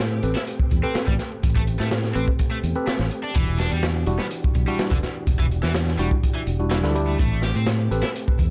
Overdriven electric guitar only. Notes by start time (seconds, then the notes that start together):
0.36 E4
0.84 C4
1.08 G3
1.56 A3
1.79 A3
2.15 C4
2.51 A3
2.87 A3
3.23 D4
3.35 E3
3.59 D4
3.71 G3
4.19 B3
4.67 G3
4.92 D3
5.39 E3
5.63 E3
5.99 G3
6.35 E3
6.71 E3
7.07 A3
7.19 A3
7.43 G4
7.55 C4
8.03 E4